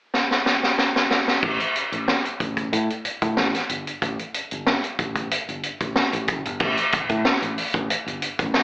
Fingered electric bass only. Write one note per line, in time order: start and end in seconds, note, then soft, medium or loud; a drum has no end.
1.43 1.58 A1 medium
1.92 2.06 A1 medium
2.40 2.68 A1 medium
2.73 2.88 A2 medium
3.05 muted fingered electric bass stroke soft
3.22 3.35 A2 medium
3.37 3.52 A1 loud
3.70 3.85 G1 medium
4.02 4.17 A1 loud
4.52 4.65 G1 medium
4.99 5.27 A1 medium
5.49 5.62 G1 medium
5.81 5.94 A1 medium
6.13 6.26 A1 medium
6.28 6.43 F#1 medium
6.46 6.59 G1 medium
6.60 6.75 A1 loud
6.93 muted fingered electric bass stroke soft
7.10 7.23 A2 medium
7.42 7.55 A1 medium
7.74 7.87 A1 loud
8.06 8.20 G1 medium
8.39 8.52 A1 medium